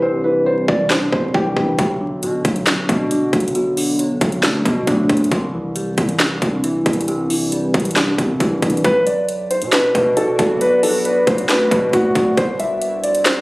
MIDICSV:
0, 0, Header, 1, 6, 480
1, 0, Start_track
1, 0, Tempo, 441176
1, 24, Time_signature, 4, 2, 24, 8
1, 14591, End_track
2, 0, Start_track
2, 0, Title_t, "Grand piano"
2, 0, Program_c, 0, 0
2, 22, Note_on_c, 0, 72, 84
2, 218, Note_off_c, 0, 72, 0
2, 262, Note_on_c, 0, 71, 71
2, 458, Note_off_c, 0, 71, 0
2, 502, Note_on_c, 0, 72, 83
2, 697, Note_off_c, 0, 72, 0
2, 742, Note_on_c, 0, 74, 84
2, 937, Note_off_c, 0, 74, 0
2, 983, Note_on_c, 0, 72, 77
2, 1178, Note_off_c, 0, 72, 0
2, 1223, Note_on_c, 0, 72, 85
2, 1418, Note_off_c, 0, 72, 0
2, 1464, Note_on_c, 0, 67, 92
2, 1915, Note_off_c, 0, 67, 0
2, 9623, Note_on_c, 0, 71, 108
2, 9818, Note_off_c, 0, 71, 0
2, 9863, Note_on_c, 0, 74, 81
2, 10314, Note_off_c, 0, 74, 0
2, 10343, Note_on_c, 0, 72, 78
2, 10538, Note_off_c, 0, 72, 0
2, 10582, Note_on_c, 0, 71, 95
2, 10777, Note_off_c, 0, 71, 0
2, 10824, Note_on_c, 0, 71, 74
2, 11019, Note_off_c, 0, 71, 0
2, 11064, Note_on_c, 0, 69, 92
2, 11258, Note_off_c, 0, 69, 0
2, 11303, Note_on_c, 0, 69, 83
2, 11498, Note_off_c, 0, 69, 0
2, 11545, Note_on_c, 0, 71, 92
2, 11739, Note_off_c, 0, 71, 0
2, 11783, Note_on_c, 0, 69, 76
2, 11978, Note_off_c, 0, 69, 0
2, 12023, Note_on_c, 0, 71, 79
2, 12218, Note_off_c, 0, 71, 0
2, 12264, Note_on_c, 0, 72, 84
2, 12458, Note_off_c, 0, 72, 0
2, 12504, Note_on_c, 0, 71, 87
2, 12699, Note_off_c, 0, 71, 0
2, 12744, Note_on_c, 0, 71, 76
2, 12939, Note_off_c, 0, 71, 0
2, 12983, Note_on_c, 0, 66, 90
2, 13434, Note_off_c, 0, 66, 0
2, 13463, Note_on_c, 0, 72, 102
2, 13658, Note_off_c, 0, 72, 0
2, 13703, Note_on_c, 0, 76, 89
2, 14155, Note_off_c, 0, 76, 0
2, 14184, Note_on_c, 0, 74, 72
2, 14379, Note_off_c, 0, 74, 0
2, 14424, Note_on_c, 0, 72, 88
2, 14591, Note_off_c, 0, 72, 0
2, 14591, End_track
3, 0, Start_track
3, 0, Title_t, "Ambient pad"
3, 0, Program_c, 1, 92
3, 9623, Note_on_c, 1, 59, 85
3, 9623, Note_on_c, 1, 66, 78
3, 9623, Note_on_c, 1, 74, 93
3, 13425, Note_off_c, 1, 59, 0
3, 13425, Note_off_c, 1, 66, 0
3, 13425, Note_off_c, 1, 74, 0
3, 13463, Note_on_c, 1, 72, 92
3, 13464, Note_on_c, 1, 62, 85
3, 13464, Note_on_c, 1, 64, 77
3, 14591, Note_off_c, 1, 62, 0
3, 14591, Note_off_c, 1, 64, 0
3, 14591, Note_off_c, 1, 72, 0
3, 14591, End_track
4, 0, Start_track
4, 0, Title_t, "Tine electric piano"
4, 0, Program_c, 2, 4
4, 0, Control_c, 2, 64, 127
4, 0, Note_on_c, 2, 48, 77
4, 0, Note_on_c, 2, 52, 90
4, 0, Note_on_c, 2, 55, 78
4, 0, Note_on_c, 2, 62, 82
4, 23, Note_off_c, 2, 48, 0
4, 23, Note_on_c, 2, 48, 94
4, 250, Note_off_c, 2, 52, 0
4, 263, Note_off_c, 2, 62, 0
4, 263, Note_on_c, 2, 52, 72
4, 491, Note_off_c, 2, 55, 0
4, 504, Note_on_c, 2, 55, 76
4, 983, Note_on_c, 2, 62, 88
4, 1210, Note_off_c, 2, 48, 0
4, 1223, Note_on_c, 2, 48, 75
4, 1450, Note_off_c, 2, 52, 0
4, 1463, Note_on_c, 2, 52, 87
4, 1690, Note_off_c, 2, 55, 0
4, 1703, Note_on_c, 2, 55, 75
4, 1943, Note_off_c, 2, 48, 0
4, 1943, Note_off_c, 2, 52, 0
4, 1943, Note_off_c, 2, 55, 0
4, 1943, Note_off_c, 2, 62, 0
4, 1944, Note_on_c, 2, 47, 92
4, 1957, Control_c, 2, 64, 0
4, 2137, Control_c, 2, 64, 127
4, 2184, Note_on_c, 2, 50, 80
4, 2423, Note_on_c, 2, 54, 79
4, 2904, Note_on_c, 2, 62, 84
4, 3131, Note_off_c, 2, 47, 0
4, 3144, Note_on_c, 2, 47, 77
4, 3370, Note_off_c, 2, 50, 0
4, 3383, Note_on_c, 2, 50, 90
4, 3610, Note_off_c, 2, 54, 0
4, 3623, Note_on_c, 2, 54, 76
4, 3850, Note_off_c, 2, 47, 0
4, 3863, Note_on_c, 2, 47, 86
4, 4090, Note_off_c, 2, 50, 0
4, 4103, Note_off_c, 2, 62, 0
4, 4103, Note_on_c, 2, 50, 74
4, 4330, Note_off_c, 2, 54, 0
4, 4343, Note_on_c, 2, 54, 77
4, 4823, Note_on_c, 2, 62, 78
4, 5049, Note_off_c, 2, 47, 0
4, 5062, Note_on_c, 2, 47, 73
4, 5290, Note_off_c, 2, 50, 0
4, 5303, Note_on_c, 2, 50, 88
4, 5530, Note_off_c, 2, 54, 0
4, 5543, Note_on_c, 2, 54, 80
4, 5783, Note_off_c, 2, 47, 0
4, 5783, Note_off_c, 2, 50, 0
4, 5783, Note_off_c, 2, 54, 0
4, 5783, Note_off_c, 2, 62, 0
4, 5783, Note_on_c, 2, 48, 90
4, 5796, Control_c, 2, 64, 0
4, 5978, Control_c, 2, 64, 127
4, 6023, Note_on_c, 2, 52, 77
4, 6262, Note_on_c, 2, 55, 82
4, 6742, Note_on_c, 2, 62, 81
4, 6970, Note_off_c, 2, 48, 0
4, 6983, Note_on_c, 2, 48, 76
4, 7210, Note_off_c, 2, 52, 0
4, 7223, Note_on_c, 2, 52, 91
4, 7450, Note_off_c, 2, 55, 0
4, 7463, Note_on_c, 2, 55, 81
4, 7690, Note_off_c, 2, 48, 0
4, 7703, Note_on_c, 2, 48, 91
4, 7930, Note_off_c, 2, 52, 0
4, 7943, Note_off_c, 2, 62, 0
4, 7943, Note_on_c, 2, 52, 75
4, 8170, Note_off_c, 2, 55, 0
4, 8183, Note_on_c, 2, 55, 78
4, 8663, Note_on_c, 2, 62, 89
4, 8890, Note_off_c, 2, 48, 0
4, 8904, Note_on_c, 2, 48, 75
4, 9130, Note_off_c, 2, 52, 0
4, 9143, Note_on_c, 2, 52, 86
4, 9370, Note_off_c, 2, 55, 0
4, 9383, Note_on_c, 2, 55, 73
4, 9623, Note_off_c, 2, 48, 0
4, 9623, Note_off_c, 2, 52, 0
4, 9623, Note_off_c, 2, 55, 0
4, 9623, Note_off_c, 2, 62, 0
4, 9637, Control_c, 2, 64, 0
4, 9797, Control_c, 2, 64, 127
4, 13476, Control_c, 2, 64, 0
4, 14591, End_track
5, 0, Start_track
5, 0, Title_t, "808-style bass"
5, 0, Program_c, 3, 38
5, 0, Note_on_c, 3, 36, 105
5, 705, Note_off_c, 3, 36, 0
5, 744, Note_on_c, 3, 36, 100
5, 1204, Note_off_c, 3, 36, 0
5, 1223, Note_on_c, 3, 36, 104
5, 1454, Note_off_c, 3, 36, 0
5, 1462, Note_on_c, 3, 36, 104
5, 1693, Note_off_c, 3, 36, 0
5, 1703, Note_on_c, 3, 36, 105
5, 1933, Note_off_c, 3, 36, 0
5, 1944, Note_on_c, 3, 35, 111
5, 2422, Note_on_c, 3, 47, 100
5, 2438, Note_off_c, 3, 35, 0
5, 2651, Note_off_c, 3, 47, 0
5, 2664, Note_on_c, 3, 35, 107
5, 3124, Note_off_c, 3, 35, 0
5, 3144, Note_on_c, 3, 47, 106
5, 3604, Note_off_c, 3, 47, 0
5, 3623, Note_on_c, 3, 35, 107
5, 4545, Note_off_c, 3, 35, 0
5, 4583, Note_on_c, 3, 35, 107
5, 4823, Note_on_c, 3, 38, 103
5, 4839, Note_off_c, 3, 35, 0
5, 5051, Note_off_c, 3, 38, 0
5, 5064, Note_on_c, 3, 47, 103
5, 5294, Note_off_c, 3, 47, 0
5, 5302, Note_on_c, 3, 38, 106
5, 5533, Note_off_c, 3, 38, 0
5, 5543, Note_on_c, 3, 38, 107
5, 5774, Note_off_c, 3, 38, 0
5, 5783, Note_on_c, 3, 36, 117
5, 6475, Note_off_c, 3, 36, 0
5, 6504, Note_on_c, 3, 36, 105
5, 6964, Note_off_c, 3, 36, 0
5, 6984, Note_on_c, 3, 36, 104
5, 7214, Note_off_c, 3, 36, 0
5, 7463, Note_on_c, 3, 36, 104
5, 8385, Note_off_c, 3, 36, 0
5, 8423, Note_on_c, 3, 36, 102
5, 8884, Note_off_c, 3, 36, 0
5, 8904, Note_on_c, 3, 36, 105
5, 9134, Note_off_c, 3, 36, 0
5, 9143, Note_on_c, 3, 36, 105
5, 9373, Note_off_c, 3, 36, 0
5, 9383, Note_on_c, 3, 36, 106
5, 9614, Note_off_c, 3, 36, 0
5, 9624, Note_on_c, 3, 35, 116
5, 10463, Note_on_c, 3, 47, 99
5, 10479, Note_off_c, 3, 35, 0
5, 10805, Note_off_c, 3, 47, 0
5, 10824, Note_on_c, 3, 47, 104
5, 11284, Note_off_c, 3, 47, 0
5, 11303, Note_on_c, 3, 35, 110
5, 12225, Note_off_c, 3, 35, 0
5, 12264, Note_on_c, 3, 35, 107
5, 12503, Note_on_c, 3, 38, 105
5, 12519, Note_off_c, 3, 35, 0
5, 12731, Note_off_c, 3, 38, 0
5, 12744, Note_on_c, 3, 47, 105
5, 12974, Note_off_c, 3, 47, 0
5, 12983, Note_on_c, 3, 38, 106
5, 13213, Note_off_c, 3, 38, 0
5, 13223, Note_on_c, 3, 38, 108
5, 13454, Note_off_c, 3, 38, 0
5, 13463, Note_on_c, 3, 36, 117
5, 14591, Note_off_c, 3, 36, 0
5, 14591, End_track
6, 0, Start_track
6, 0, Title_t, "Drums"
6, 743, Note_on_c, 9, 36, 100
6, 852, Note_off_c, 9, 36, 0
6, 983, Note_on_c, 9, 38, 115
6, 983, Note_on_c, 9, 39, 92
6, 1091, Note_off_c, 9, 38, 0
6, 1092, Note_off_c, 9, 39, 0
6, 1224, Note_on_c, 9, 36, 103
6, 1332, Note_off_c, 9, 36, 0
6, 1462, Note_on_c, 9, 36, 93
6, 1571, Note_off_c, 9, 36, 0
6, 1703, Note_on_c, 9, 36, 100
6, 1812, Note_off_c, 9, 36, 0
6, 1943, Note_on_c, 9, 36, 120
6, 1943, Note_on_c, 9, 42, 73
6, 2052, Note_off_c, 9, 36, 0
6, 2052, Note_off_c, 9, 42, 0
6, 2424, Note_on_c, 9, 42, 78
6, 2533, Note_off_c, 9, 42, 0
6, 2664, Note_on_c, 9, 36, 98
6, 2664, Note_on_c, 9, 42, 82
6, 2772, Note_off_c, 9, 36, 0
6, 2773, Note_off_c, 9, 42, 0
6, 2784, Note_on_c, 9, 42, 47
6, 2893, Note_off_c, 9, 42, 0
6, 2903, Note_on_c, 9, 38, 117
6, 2904, Note_on_c, 9, 39, 91
6, 2905, Note_on_c, 9, 42, 80
6, 3012, Note_off_c, 9, 38, 0
6, 3013, Note_off_c, 9, 39, 0
6, 3014, Note_off_c, 9, 42, 0
6, 3144, Note_on_c, 9, 36, 103
6, 3146, Note_on_c, 9, 42, 83
6, 3253, Note_off_c, 9, 36, 0
6, 3255, Note_off_c, 9, 42, 0
6, 3382, Note_on_c, 9, 42, 90
6, 3491, Note_off_c, 9, 42, 0
6, 3623, Note_on_c, 9, 36, 103
6, 3623, Note_on_c, 9, 42, 64
6, 3703, Note_off_c, 9, 42, 0
6, 3703, Note_on_c, 9, 42, 64
6, 3732, Note_off_c, 9, 36, 0
6, 3783, Note_off_c, 9, 42, 0
6, 3783, Note_on_c, 9, 42, 65
6, 3863, Note_off_c, 9, 42, 0
6, 3863, Note_on_c, 9, 42, 71
6, 3972, Note_off_c, 9, 42, 0
6, 4104, Note_on_c, 9, 46, 85
6, 4213, Note_off_c, 9, 46, 0
6, 4343, Note_on_c, 9, 42, 77
6, 4452, Note_off_c, 9, 42, 0
6, 4583, Note_on_c, 9, 36, 97
6, 4583, Note_on_c, 9, 42, 81
6, 4692, Note_off_c, 9, 36, 0
6, 4692, Note_off_c, 9, 42, 0
6, 4703, Note_on_c, 9, 42, 47
6, 4812, Note_off_c, 9, 42, 0
6, 4823, Note_on_c, 9, 38, 112
6, 4823, Note_on_c, 9, 39, 90
6, 4824, Note_on_c, 9, 42, 81
6, 4931, Note_off_c, 9, 38, 0
6, 4932, Note_off_c, 9, 39, 0
6, 4933, Note_off_c, 9, 42, 0
6, 5064, Note_on_c, 9, 36, 101
6, 5066, Note_on_c, 9, 42, 86
6, 5172, Note_off_c, 9, 36, 0
6, 5175, Note_off_c, 9, 42, 0
6, 5302, Note_on_c, 9, 36, 95
6, 5302, Note_on_c, 9, 42, 88
6, 5411, Note_off_c, 9, 36, 0
6, 5411, Note_off_c, 9, 42, 0
6, 5543, Note_on_c, 9, 36, 101
6, 5543, Note_on_c, 9, 42, 64
6, 5623, Note_off_c, 9, 42, 0
6, 5623, Note_on_c, 9, 42, 65
6, 5652, Note_off_c, 9, 36, 0
6, 5703, Note_off_c, 9, 42, 0
6, 5703, Note_on_c, 9, 42, 62
6, 5783, Note_off_c, 9, 42, 0
6, 5783, Note_on_c, 9, 36, 120
6, 5783, Note_on_c, 9, 42, 72
6, 5892, Note_off_c, 9, 36, 0
6, 5892, Note_off_c, 9, 42, 0
6, 6264, Note_on_c, 9, 42, 79
6, 6372, Note_off_c, 9, 42, 0
6, 6503, Note_on_c, 9, 36, 97
6, 6503, Note_on_c, 9, 42, 81
6, 6612, Note_off_c, 9, 36, 0
6, 6612, Note_off_c, 9, 42, 0
6, 6623, Note_on_c, 9, 42, 47
6, 6732, Note_off_c, 9, 42, 0
6, 6743, Note_on_c, 9, 38, 112
6, 6743, Note_on_c, 9, 39, 90
6, 6744, Note_on_c, 9, 42, 78
6, 6851, Note_off_c, 9, 38, 0
6, 6852, Note_off_c, 9, 39, 0
6, 6853, Note_off_c, 9, 42, 0
6, 6984, Note_on_c, 9, 36, 104
6, 6986, Note_on_c, 9, 42, 85
6, 7092, Note_off_c, 9, 36, 0
6, 7094, Note_off_c, 9, 42, 0
6, 7222, Note_on_c, 9, 42, 91
6, 7330, Note_off_c, 9, 42, 0
6, 7462, Note_on_c, 9, 42, 66
6, 7463, Note_on_c, 9, 36, 101
6, 7543, Note_off_c, 9, 42, 0
6, 7543, Note_on_c, 9, 42, 65
6, 7572, Note_off_c, 9, 36, 0
6, 7623, Note_off_c, 9, 42, 0
6, 7623, Note_on_c, 9, 42, 63
6, 7703, Note_off_c, 9, 42, 0
6, 7703, Note_on_c, 9, 42, 74
6, 7812, Note_off_c, 9, 42, 0
6, 7944, Note_on_c, 9, 46, 85
6, 8053, Note_off_c, 9, 46, 0
6, 8184, Note_on_c, 9, 42, 80
6, 8292, Note_off_c, 9, 42, 0
6, 8424, Note_on_c, 9, 36, 101
6, 8424, Note_on_c, 9, 42, 50
6, 8483, Note_off_c, 9, 42, 0
6, 8483, Note_on_c, 9, 42, 63
6, 8532, Note_off_c, 9, 36, 0
6, 8543, Note_off_c, 9, 42, 0
6, 8543, Note_on_c, 9, 42, 73
6, 8603, Note_off_c, 9, 42, 0
6, 8603, Note_on_c, 9, 42, 81
6, 8663, Note_on_c, 9, 38, 118
6, 8664, Note_off_c, 9, 42, 0
6, 8664, Note_on_c, 9, 39, 91
6, 8664, Note_on_c, 9, 42, 78
6, 8772, Note_off_c, 9, 38, 0
6, 8772, Note_off_c, 9, 39, 0
6, 8773, Note_off_c, 9, 42, 0
6, 8904, Note_on_c, 9, 36, 97
6, 8906, Note_on_c, 9, 42, 87
6, 9013, Note_off_c, 9, 36, 0
6, 9015, Note_off_c, 9, 42, 0
6, 9142, Note_on_c, 9, 36, 90
6, 9142, Note_on_c, 9, 42, 90
6, 9251, Note_off_c, 9, 36, 0
6, 9251, Note_off_c, 9, 42, 0
6, 9383, Note_on_c, 9, 36, 103
6, 9383, Note_on_c, 9, 42, 75
6, 9463, Note_off_c, 9, 42, 0
6, 9463, Note_on_c, 9, 42, 61
6, 9492, Note_off_c, 9, 36, 0
6, 9544, Note_off_c, 9, 42, 0
6, 9544, Note_on_c, 9, 42, 43
6, 9623, Note_off_c, 9, 42, 0
6, 9623, Note_on_c, 9, 36, 120
6, 9623, Note_on_c, 9, 42, 75
6, 9732, Note_off_c, 9, 36, 0
6, 9732, Note_off_c, 9, 42, 0
6, 9864, Note_on_c, 9, 42, 82
6, 9973, Note_off_c, 9, 42, 0
6, 10103, Note_on_c, 9, 42, 78
6, 10212, Note_off_c, 9, 42, 0
6, 10343, Note_on_c, 9, 42, 71
6, 10452, Note_off_c, 9, 42, 0
6, 10463, Note_on_c, 9, 42, 67
6, 10572, Note_off_c, 9, 42, 0
6, 10583, Note_on_c, 9, 38, 118
6, 10583, Note_on_c, 9, 39, 95
6, 10584, Note_on_c, 9, 42, 80
6, 10692, Note_off_c, 9, 38, 0
6, 10692, Note_off_c, 9, 39, 0
6, 10693, Note_off_c, 9, 42, 0
6, 10824, Note_on_c, 9, 36, 100
6, 10826, Note_on_c, 9, 42, 91
6, 10933, Note_off_c, 9, 36, 0
6, 10935, Note_off_c, 9, 42, 0
6, 11063, Note_on_c, 9, 42, 90
6, 11171, Note_off_c, 9, 42, 0
6, 11303, Note_on_c, 9, 36, 103
6, 11303, Note_on_c, 9, 42, 85
6, 11412, Note_off_c, 9, 36, 0
6, 11412, Note_off_c, 9, 42, 0
6, 11544, Note_on_c, 9, 42, 77
6, 11652, Note_off_c, 9, 42, 0
6, 11785, Note_on_c, 9, 46, 88
6, 11894, Note_off_c, 9, 46, 0
6, 12024, Note_on_c, 9, 42, 78
6, 12133, Note_off_c, 9, 42, 0
6, 12264, Note_on_c, 9, 36, 102
6, 12264, Note_on_c, 9, 42, 72
6, 12373, Note_off_c, 9, 36, 0
6, 12373, Note_off_c, 9, 42, 0
6, 12384, Note_on_c, 9, 42, 70
6, 12493, Note_off_c, 9, 42, 0
6, 12504, Note_on_c, 9, 38, 121
6, 12505, Note_on_c, 9, 39, 91
6, 12505, Note_on_c, 9, 42, 84
6, 12613, Note_off_c, 9, 38, 0
6, 12613, Note_off_c, 9, 39, 0
6, 12614, Note_off_c, 9, 42, 0
6, 12744, Note_on_c, 9, 36, 102
6, 12746, Note_on_c, 9, 42, 88
6, 12853, Note_off_c, 9, 36, 0
6, 12855, Note_off_c, 9, 42, 0
6, 12983, Note_on_c, 9, 36, 97
6, 12983, Note_on_c, 9, 42, 90
6, 13091, Note_off_c, 9, 36, 0
6, 13091, Note_off_c, 9, 42, 0
6, 13223, Note_on_c, 9, 36, 105
6, 13223, Note_on_c, 9, 42, 80
6, 13332, Note_off_c, 9, 36, 0
6, 13332, Note_off_c, 9, 42, 0
6, 13463, Note_on_c, 9, 36, 126
6, 13463, Note_on_c, 9, 42, 78
6, 13572, Note_off_c, 9, 36, 0
6, 13572, Note_off_c, 9, 42, 0
6, 13704, Note_on_c, 9, 42, 83
6, 13813, Note_off_c, 9, 42, 0
6, 13944, Note_on_c, 9, 42, 79
6, 14052, Note_off_c, 9, 42, 0
6, 14183, Note_on_c, 9, 42, 72
6, 14292, Note_off_c, 9, 42, 0
6, 14303, Note_on_c, 9, 42, 73
6, 14412, Note_off_c, 9, 42, 0
6, 14423, Note_on_c, 9, 38, 120
6, 14423, Note_on_c, 9, 39, 91
6, 14424, Note_on_c, 9, 42, 80
6, 14532, Note_off_c, 9, 38, 0
6, 14532, Note_off_c, 9, 39, 0
6, 14533, Note_off_c, 9, 42, 0
6, 14591, End_track
0, 0, End_of_file